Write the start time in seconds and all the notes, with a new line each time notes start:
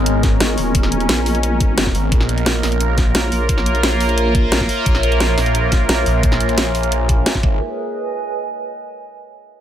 Already playing: G#1 G#3 B3 C#4 G#4 A#4 D#5 G#5
0.06 closed hi-hat
0.23 kick, snare, closed hi-hat
0.40 G#1, snare, closed hi-hat
0.58 D#1, open hi-hat
0.75 kick, closed hi-hat
0.83 snare
0.92 closed hi-hat
1.00 closed hi-hat
1.09 A#1, snare, closed hi-hat
1.26 open hi-hat
1.35 closed hi-hat
1.43 closed hi-hat
1.60 kick, closed hi-hat
1.78 snare, closed hi-hat
1.86 kick, snare
1.95 G#1, open hi-hat
2.12 A#1 A#3 F4 A#4, kick, closed hi-hat
2.21 snare
2.27 C#5, closed hi-hat
2.32 E5
2.38 closed hi-hat
2.46 snare, closed hi-hat
2.63 A#1, snare, open hi-hat
2.72 closed hi-hat
2.81 closed hi-hat
2.98 kick, snare, closed hi-hat
3.03 A#5
3.15 A#1, snare, closed hi-hat
3.32 A#1, open hi-hat
3.49 kick, closed hi-hat
3.58 snare
3.66 closed hi-hat
3.75 closed hi-hat
3.83 snare, closed hi-hat
4.00 open hi-hat
4.09 closed hi-hat
4.18 closed hi-hat
4.35 kick, closed hi-hat
4.52 snare, closed hi-hat
4.60 kick, snare
4.69 open hi-hat
4.86 A#1, kick, closed hi-hat
4.95 snare
5.03 closed hi-hat
5.12 closed hi-hat
5.20 snare, closed hi-hat
5.38 A#1, snare, open hi-hat
5.46 closed hi-hat
5.55 closed hi-hat
5.72 kick, snare, closed hi-hat
5.87 A#1 G#5, snare, closed hi-hat
6.06 A#1, open hi-hat
6.23 kick, closed hi-hat
6.32 snare
6.40 A#1, closed hi-hat
6.49 closed hi-hat
6.58 snare, closed hi-hat
6.75 open hi-hat
6.83 closed hi-hat
6.92 closed hi-hat
7.09 kick, closed hi-hat
7.26 snare, closed hi-hat
7.35 kick, snare
7.43 G#1 G#3 D#4 G#4 A#4, kick
7.48 B4
7.71 D#5
7.76 G#5